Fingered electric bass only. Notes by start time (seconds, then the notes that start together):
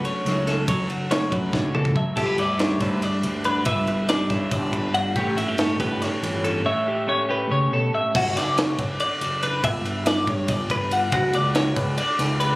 0.25 C#2
0.68 F#1
1.32 F#2
1.53 F#1
2.17 G1
2.38 D2
2.81 D2
3.23 D2
3.66 G1
4.30 G2
4.51 G1
5.15 A1
5.37 G1
5.80 G1
6.22 G1
8.15 G1
8.36 F#1
8.79 F#1
9.21 F#1
9.64 G1
10.27 G2
10.48 G1
11.12 F#1
11.33 C#2
11.77 C#2
12.19 C#2